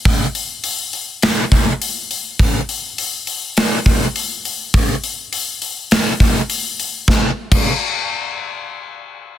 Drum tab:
CC |----------------|----------------|----------------|---x------------|
HH |o-o-o-o-o-o-o-o-|o-o-o-o-o-o-o-o-|o-o-o-o-o-o-o-o-|----------------|
SD |--------o-------|--------o-------|--------o-------|o---------------|
BD |o---------o-----|o---------o-----|o---------o-----|o--o------------|